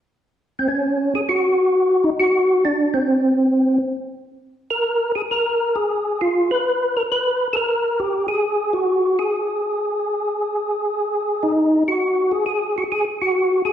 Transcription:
0.59 0.68 C4 medium
0.68 1.14 C#4 medium
1.15 1.21 G#4 medium
1.29 2.05 F#4 medium
2.04 2.10 D#4 medium
2.20 2.64 F#4 loud
2.65 2.94 D4 medium
2.94 3.78 C4 medium
4.71 5.12 A#4 medium
5.15 5.22 G#4 medium
5.31 5.77 A#4 medium
5.76 6.21 G#4 medium
6.21 6.51 F4 medium
6.51 6.96 B4 medium
6.97 7.03 A#4 medium
7.12 7.48 B4 medium
7.53 7.56 A4 medium
7.53 8.01 A#4 loud
8.00 8.27 G4 medium
8.28 8.74 G#4 medium
8.73 9.19 F#4 medium
9.19 11.52 G#4 medium
11.43 11.84 D#4 medium
11.88 12.33 F#4 medium
12.32 12.45 G#4 medium
12.46 12.76 G#4 medium
12.78 12.84 F#4 medium
12.92 13.05 G#4 medium
13.22 13.62 F#4 medium
13.65 13.73 G#4 medium

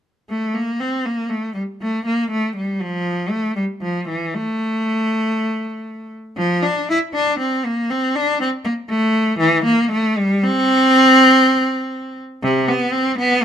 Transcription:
0.30 0.54 A3 medium
0.55 0.80 A#3 medium
0.80 1.06 C4 medium
1.06 1.31 A#3 medium
1.30 1.56 A3 medium
1.54 1.62 G3 medium
1.82 2.06 A3 medium
2.06 2.31 A#3 medium
2.31 2.55 A3 medium
2.56 2.81 G3 medium
2.81 3.31 F3 medium
3.30 3.56 A3 medium
3.56 3.64 G3 medium
3.82 4.08 F3 medium
4.08 4.34 E3 medium
4.34 6.11 A3 medium
6.37 6.64 F3 loud
6.63 6.90 D4 medium
6.90 6.98 E4 loud
7.15 7.41 D4 loud
7.40 7.65 C4 medium
7.65 7.91 A#3 medium
7.90 8.16 C4 medium
8.15 8.41 D4 medium
8.41 8.49 C4 loud
8.65 8.73 A#3 medium
8.89 9.39 A3 loud
9.39 9.65 E3 loud
9.65 9.91 A#3 loud
9.92 10.18 A3 loud
10.18 10.44 G3 loud
10.44 12.18 C4 loud
12.43 12.69 C3 loud
12.68 12.94 B3 loud
12.93 13.19 C4 loud
13.18 13.43 B3 loud

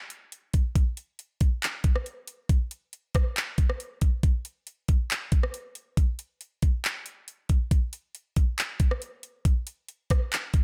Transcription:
0.10 closed hi-hat medium
0.32 closed hi-hat medium
0.54 kick medium
0.54 closed hi-hat medium
0.76 kick loud
0.76 closed hi-hat medium
0.97 closed hi-hat medium
1.19 closed hi-hat medium
1.41 kick loud
1.41 closed hi-hat medium
1.62 clap loud
1.62 closed hi-hat medium
1.84 kick loud
1.84 closed hi-hat medium
1.96 cross-stick medium
2.06 closed hi-hat medium
2.27 closed hi-hat medium
2.49 kick loud
2.49 closed hi-hat medium
2.71 closed hi-hat medium
2.93 closed hi-hat medium
3.14 kick loud
3.14 cross-stick loud
3.14 closed hi-hat medium
3.36 clap loud
3.36 closed hi-hat medium
3.58 kick loud
3.58 closed hi-hat medium
3.70 cross-stick medium
3.80 closed hi-hat medium
4.01 kick medium
4.01 closed hi-hat medium
4.23 kick loud
4.23 closed hi-hat medium
4.45 closed hi-hat medium
4.67 closed hi-hat medium
4.88 kick loud
4.88 closed hi-hat medium
5.10 clap loud
5.10 closed hi-hat medium
5.32 kick loud
5.32 closed hi-hat medium
5.43 cross-stick medium
5.54 closed hi-hat medium
5.75 closed hi-hat medium
5.97 kick loud
5.97 closed hi-hat medium
6.19 closed hi-hat medium
6.41 closed hi-hat medium
6.62 kick loud
6.62 closed hi-hat medium
6.84 clap loud
6.84 closed hi-hat medium
7.06 closed hi-hat medium
7.28 closed hi-hat medium
7.49 kick medium
7.49 closed hi-hat medium
7.71 kick loud
7.71 closed hi-hat medium
7.93 closed hi-hat medium
8.15 closed hi-hat medium
8.36 kick loud
8.36 closed hi-hat medium
8.58 clap loud
8.58 closed hi-hat medium
8.80 kick loud
8.80 closed hi-hat medium
8.91 cross-stick medium
9.02 closed hi-hat medium
9.23 closed hi-hat medium
9.45 kick loud
9.45 closed hi-hat medium
9.67 closed hi-hat medium
9.89 closed hi-hat medium
10.10 kick loud
10.10 cross-stick loud
10.10 closed hi-hat medium
10.32 clap loud
10.32 closed hi-hat medium
10.54 kick loud
10.54 closed hi-hat medium

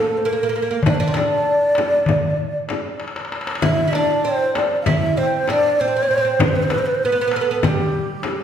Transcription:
0.00 0.25 A3 medium
0.00 0.19 A4 medium
0.17 0.27 C5 medium
0.23 0.31 A#3 medium
0.23 0.89 A#4 medium
0.23 darbuka ka soft
0.33 0.40 A#3 soft
0.43 0.48 A#3 medium
0.49 0.54 A#3 medium
0.54 0.61 A#3 medium
0.54 darbuka ka soft
0.62 0.70 A#3 medium
0.71 0.77 A#3 medium
0.83 darbuka dum medium
0.83 frame drum medium
0.87 0.99 D4 medium
0.87 0.96 D5 medium
0.94 1.04 C5 medium
1.00 1.06 D4 medium
1.00 3.03 D5 loud
1.07 1.14 C4 medium
1.14 2.98 D4 medium
1.14 darbuka tek medium
1.14 frame drum medium
1.31 darbuka ka soft
1.46 darbuka ka soft
1.75 darbuka tek medium
1.75 frame drum medium
2.06 darbuka dum medium
2.06 frame drum medium
2.22 darbuka ka soft
2.37 darbuka ka soft
2.69 darbuka tek medium
2.69 frame drum medium
3.00 darbuka tek medium
3.08 darbuka ka medium
3.16 darbuka tek medium
3.25 darbuka ka medium
3.32 darbuka tek medium
3.41 darbuka ka medium
3.47 darbuka tek medium
3.55 darbuka ka medium
3.62 3.85 E4 medium
3.62 3.92 E5 loud
3.62 frame drum medium
3.62 darbuka dum medium
3.88 3.94 E4 medium
3.88 4.26 D5 loud
3.93 4.24 D4 medium
3.93 darbuka tek medium
3.93 frame drum medium
4.09 darbuka ka soft
4.24 4.86 C4 medium
4.24 4.57 C5 medium
4.55 4.79 D5 medium
4.55 darbuka tek medium
4.55 frame drum medium
4.81 4.88 F5 medium
4.86 5.17 E4 medium
4.86 5.19 E5 medium
4.86 frame drum loud
4.86 darbuka dum medium
5.03 darbuka ka soft
5.17 5.49 C4 medium
5.17 5.51 C5 medium
5.17 darbuka ka soft
5.47 5.80 D4 medium
5.47 5.81 D5 medium
5.47 darbuka tek medium
5.47 frame drum medium
5.80 5.87 C4 medium
5.80 6.41 C5 loud
5.88 5.94 C4 soft
5.96 6.01 C4 soft
6.02 6.09 C4 soft
6.11 6.16 C4 medium
6.18 6.23 C4 soft
6.25 6.31 C4 soft
6.39 6.49 B4 medium
6.39 darbuka dum medium
6.39 frame drum loud
6.48 6.57 C5 medium
6.55 6.64 B4 medium
6.62 6.72 C5 medium
6.70 6.79 B4 medium
6.70 darbuka tek medium
6.70 frame drum medium
6.78 6.87 C5 medium
6.86 6.96 B4 medium
6.86 darbuka ka soft
6.94 7.05 C5 medium
7.03 7.11 B3 medium
7.03 7.34 B4 loud
7.12 7.20 B3 medium
7.21 7.26 B3 medium
7.28 7.35 B3 medium
7.28 darbuka tek medium
7.33 7.40 B3 medium
7.33 7.66 A4 medium
7.41 7.49 B3 medium
7.51 7.58 B3 medium
7.63 8.44 G3 medium
7.63 8.44 G4 medium
7.63 darbuka dum medium
7.63 frame drum loud
7.79 darbuka ka soft
7.92 darbuka ka soft
8.23 darbuka tek medium
8.23 frame drum medium

